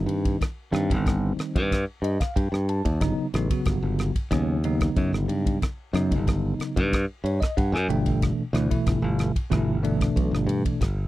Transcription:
Already playing: D#3 G3 C4 D#4
0.06 G2, ride
0.25 kick, ride
0.41 kick, cross-stick, ride
0.71 G2 D#3 G3 C4 D#4, cross-stick, ride
0.90 G1, kick, ride
1.06 kick, cross-stick, ride
1.37 muted fingered electric bass stroke, cross-stick, ride
1.55 G2, kick, ride
1.72 kick, cross-stick, ride
2.02 G2 D#5, ride
2.20 F5, kick, cross-stick, ride
2.36 G2 G5, kick, ride
2.52 G2, cross-stick
2.69 A5, ride
2.85 D#2, kick, ride
3.01 G1 C#3 F#3 B3 D#4, kick, cross-stick, ride
3.18 muted fingered electric bass stroke
3.34 A1 C#3 F#3 B3 D#4, cross-stick, ride
3.50 C#3 F#3 B3 F#4, muted fingered electric bass stroke, kick, ride
3.65 G1, kick, cross-stick, ride
3.83 G1
3.99 cross-stick, ride
4.16 kick, ride
4.31 D#2 C#3 F#3 B3 C#4, kick, cross-stick, ride
4.64 C#3 F#3 B3 D#4, ride
4.81 kick, cross-stick, ride
4.96 F#2, kick, ride
5.13 G1, cross-stick
5.28 G2, ride
5.46 kick, ride
5.62 kick, cross-stick, ride
5.93 F#2 C#3 F#3 B3 D#4, cross-stick, ride
6.11 G1, kick, ride
6.27 kick, cross-stick, ride
6.59 muted fingered electric bass stroke, cross-stick, ride
6.76 G2, kick, ride
6.93 kick, cross-stick, ride
7.24 G2 C#5, ride
7.40 D#5, kick, cross-stick, ride
7.57 G2 F#5, kick, ride
7.72 F#2 G#5, cross-stick
7.89 G1 B2 E3 A3 D4 G5, ride
8.06 kick, ride
8.22 kick, cross-stick, ride
8.38 muted fingered electric bass stroke
8.53 D2 B2 E3 A3 E4, cross-stick, ride
8.70 B2 E3 A3 E4, muted fingered electric bass stroke, kick, ride
8.86 G1, kick, cross-stick, ride
9.02 G1
9.19 cross-stick, ride
9.36 kick, ride
9.51 G1 B2 E3 A3 E4, kick, cross-stick, ride
9.83 B2 E3 A3 D4, ride
10.01 kick, cross-stick, ride
10.16 B1, kick, ride
10.31 G1, cross-stick
10.47 G2, ride
10.65 kick, ride
10.81 G1, kick, cross-stick, ride

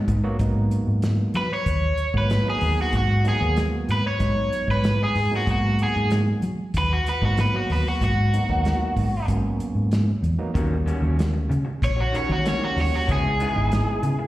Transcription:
0.08 G#2, muted clean electric guitar stroke, kick, closed hi-hat
0.24 F#3 A#3 B3 F#4, muted clean electric guitar stroke
0.39 G#2 F#3 A#3 B3 D#4, kick, closed hi-hat
0.71 closed hi-hat
0.88 G#2
1.02 snare, closed hi-hat
1.34 F#3 B4, closed hi-hat
1.54 C#5
1.66 D#2, kick, closed hi-hat
1.97 closed hi-hat
2.13 G#2 F#3 A#3 B3 F#4, kick
2.18 B4
2.30 snare, closed hi-hat
2.45 F#3 A#3 B3 D#4
2.50 G#4
2.61 D#2, open hi-hat
2.82 F#4
2.93 G#2, kick, closed hi-hat
2.97 F#4
3.24 F#3 A#3 B3 D#4, closed hi-hat
3.29 G#4
3.39 D#2 F#3 A#3 B3 F#4
3.56 snare, closed hi-hat
3.88 G#2 B4, snare, closed hi-hat
4.07 C#5
4.19 G#2 F#3 G#3 B3 D#4, kick, closed hi-hat
4.52 muted fingered electric bass stroke, snare, closed hi-hat
4.68 G#2 B4, kick, snare
4.84 snare, closed hi-hat
5.04 G#4
5.15 G#2, snare, open hi-hat
5.31 F#3 A#3 B3 D#4
5.36 F#4
5.47 G#2 F#3 A#3 B3 D#4, kick, closed hi-hat
5.52 F#4
5.79 closed hi-hat
5.83 G#4
5.96 G#2
6.10 snare, closed hi-hat
6.42 F#3, closed hi-hat
6.74 D#2 B4, kick, closed hi-hat
6.93 F#4
7.06 B4, snare, closed hi-hat
7.22 G#2 F#3 A#3 B3 D#4 F#4, kick
7.37 B4, snare, closed hi-hat
7.54 F#3 A#3 B3 F#4
7.70 D#2 B4, snare, open hi-hat
7.88 F#4
8.01 G#2 F#4, kick, closed hi-hat
8.33 F#3 A#3 B3 D#4, closed hi-hat
8.49 D#2 F#3 A#3 B3 D#4, kick
8.65 snare, closed hi-hat
8.97 G#2, kick, open hi-hat
9.28 G#2 F#3 A#3 B3 C#4, kick, closed hi-hat
9.59 muted fingered electric bass stroke, closed hi-hat
9.75 G#2
9.91 snare, closed hi-hat
10.23 E2, closed hi-hat
10.39 F#3 A#3 B3 D#4
10.54 D#2 D#3 G3 A#3 C#4 F#4, kick, closed hi-hat
10.86 D#3 G3 C#4 F#4, closed hi-hat
11.02 D#2 G3 C#4 F#4
11.18 muted clean electric guitar stroke, snare, closed hi-hat
11.33 muted clean electric guitar stroke
11.49 C#3, muted clean electric guitar stroke, closed hi-hat
11.65 muted clean electric guitar stroke
11.82 A#1 C#5, kick, closed hi-hat
11.96 muted clean electric guitar stroke
12.01 F#4
12.12 D#3 G3 C#4 F#4, closed hi-hat
12.16 C#5
12.28 D#3 G3 A#3 C#4 F#4, muted clean electric guitar stroke, kick
12.45 D#3 G3 C#4 F#4, snare, closed hi-hat
12.49 C#5
12.60 G3 A#3 C#4 G4
12.64 F#4
12.76 D#2, muted clean electric guitar stroke, snare, open hi-hat
12.81 C#5
12.92 F#4, muted clean electric guitar stroke
13.07 C#2 C#3 G#3 B3 E4, kick, closed hi-hat
13.12 G#4
13.39 C#3 G#3 B3 D#4 E4, closed hi-hat
13.55 G#1 G#3 B3 D#4 E4
13.71 muted clean electric guitar stroke, snare, closed hi-hat
13.87 muted clean electric guitar stroke
14.03 C#3, muted clean electric guitar stroke, closed hi-hat
14.19 muted clean electric guitar stroke

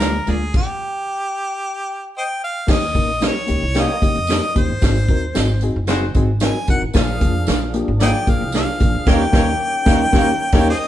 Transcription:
Already playing: D2 A#4
0.00 G#3 A#3 D4 F4 G4 G#4 D5, snare, closed hi-hat, tambourine
0.26 D2 G#3 A#3 D4 F4 G#4 D5, closed hi-hat
0.54 G4, kick, crash
2.18 C5 D#5 G5
2.44 F5
2.67 D#2 A#3 C#4 D#4 G4, kick, snare, crash, tambourine
2.72 D#5
2.81 closed hi-hat
2.94 A#1 A#3 C#4 D#4 A#4, kick, closed hi-hat
3.20 A#3 C#4 D#4 G4 A#4 D#5, snare, closed hi-hat, tambourine
3.27 C#5
3.47 C#2 A#3 C#4 D#4 G4, closed hi-hat
3.62 C2
3.74 A#3 C#4 D#4 G4 C#5, snare, closed hi-hat, tambourine
3.80 D#5
4.02 C#2 A#3 C#4 D#4 G4, kick, closed hi-hat
4.15 F2, closed hi-hat
4.27 A#3 C#4 D#4 G4 A#4 D#5, snare, closed hi-hat, tambourine
4.55 D#2 A#3 C#4 D#4 G4 C5, kick, closed hi-hat
4.68 G1
4.82 G#1 C4 D#4 F#4 G#4, kick, snare, closed hi-hat, tambourine
4.96 closed hi-hat
5.08 D#2 C4 D#4 F#4 A#4, kick, closed hi-hat
5.35 G#1 C4 D#4 F#4 G#4 D#5, snare, closed hi-hat, tambourine
5.61 C4 D#4 F#4 G#4, closed hi-hat
5.76 F#1
5.87 G#3 C4 D#4 F#4 G#4 C5, snare, closed hi-hat, tambourine
6.14 G#1 C4 D#4 F#4 G#4, kick, closed hi-hat
6.40 C4 D#4 F#4 G#4 A#4 D#5 G#5, snare, closed hi-hat, tambourine
6.67 C2 C4 D#4 F#4 A#4 F#5, kick, closed hi-hat
6.82 A1
6.94 A#1 F3 A#3 D4 F4 G#4 F5, kick, snare, closed hi-hat, tambourine
7.20 F2 A#3 D4 F4 G#4, kick, closed hi-hat
7.47 A#1 A#3 D4 F4 G#4 D5, snare, closed hi-hat, tambourine
7.74 A#3 D4 F4 G4, closed hi-hat
7.88 G#1
8.00 A#3 D4 F4 G#4 C5 D5 D#5 G5, snare, closed hi-hat, tambourine
8.27 A#1 A#3 D4 F4 G#4 F5, kick, closed hi-hat
8.41 C2
8.52 A#3 D4 F4 G4 G#4 D5 F5, snare, closed hi-hat, tambourine
8.80 A#1 A#3 D4 F4 G#4, kick, closed hi-hat
8.94 D2
9.07 D#2 D#3 A#3 C#4 D#4 G4 A#4 C#5 D#5 G5, kick, snare, crash
9.32 D#2 A#3 C#4 D#4 G4 A#4 C#5 D#5, kick, snare
9.86 D#2 A#3 C#4 D#4 G4 A#4 C#5 D#5, kick, snare
10.13 D#2 A#3 C#4 D#4 G4 A#4 C#5 D#5, kick, snare
10.52 D#2 A#3 C#4 D#4 G4 A#4 C#5 D#5, kick, snare, crash
10.70 G#4 C5 D#5

